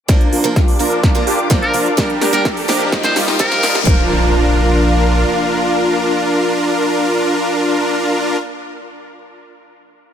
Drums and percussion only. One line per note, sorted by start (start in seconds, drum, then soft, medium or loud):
0.09 kick loud
0.09 snare soft
0.09 closed hi-hat medium
0.21 closed hi-hat soft
0.33 open hi-hat loud
0.56 kick loud
0.56 snare soft
0.56 closed hi-hat medium
0.68 open hi-hat medium
0.80 open hi-hat loud
0.92 closed hi-hat medium
1.03 kick loud
1.03 snare medium
1.03 closed hi-hat medium
1.27 open hi-hat loud
1.39 closed hi-hat medium
1.51 kick loud
1.51 snare medium
1.51 closed hi-hat medium
1.62 closed hi-hat soft
1.74 open hi-hat loud
1.86 closed hi-hat medium
1.98 kick loud
1.98 snare medium
1.98 closed hi-hat medium
2.10 closed hi-hat soft
2.21 snare medium
2.21 open hi-hat loud
2.33 closed hi-hat medium
2.45 kick loud
2.45 snare medium
2.45 closed hi-hat medium
2.57 open hi-hat medium
2.69 snare medium
2.69 open hi-hat loud
2.81 closed hi-hat medium
2.92 kick loud
2.92 snare medium
2.92 closed hi-hat medium
3.04 snare medium
3.16 snare medium
3.16 open hi-hat loud
3.28 snare medium
3.28 open hi-hat medium
3.40 kick loud
3.40 snare loud
3.40 closed hi-hat medium
3.52 snare medium
3.52 closed hi-hat soft
3.63 snare loud
3.63 open hi-hat loud
3.75 snare medium
3.75 closed hi-hat medium
3.87 kick loud